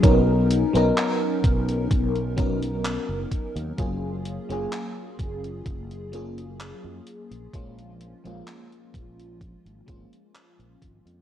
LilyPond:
<<
  \new Staff \with { instrumentName = "FM electric piano" } { \time 4/4 \key fis \major \tempo 4 = 64 <fis b cis' dis' ais'>8. <fis b cis' dis' ais'>4.~ <fis b cis' dis' ais'>16 <fis b cis' dis' ais'>4. | <fis ais cis' eis' gis'>8. <fis ais cis' eis' gis'>4.~ <fis ais cis' eis' gis'>16 <fis ais cis' eis' gis'>4. | <eis gis ais cis' eis'>8. <eis gis ais cis' eis'>4.~ <eis gis ais cis' eis'>16 <eis gis ais cis' eis'>4. | }
  \new Staff \with { instrumentName = "Fretless electric bass" } { \clef bass \time 4/4 \key fis \major b,,8. b,,16 r8 b,,8 b,,4~ b,,16 fis,,16 r16 dis,16 | fis,,8. fis,,16 r8 fis,,8 fis,,4~ fis,,16 fis,16 r16 ais,,16 | ais,,8. ais,,16 r8 ais,,8. gis,,16 gis,,16 r8 ais,,16 gis,,16 eis,16 | }
  \new DrumStaff \with { instrumentName = "Drums" } \drummode { \time 4/4 <hh bd>8 hh16 hh16 <hc hh>8 <hh bd>16 hh16 <hh bd>16 hh16 <hh bd>16 hh16 <hc hh>8 <hh bd>16 hh16 | <hh bd>8 hh16 hh16 <hc hh>8 <hh bd>16 hh16 <hh bd>16 hh16 hh16 hh16 <hc hh>8 hh16 hh16 | <hh bd>16 hh16 hh16 hh16 <hc hh>16 hh16 <hh bd>16 hh16 <hh bd>16 hh16 <hh bd>16 hh16 <hc hh>16 hh16 <hh bd>16 hh16 | }
>>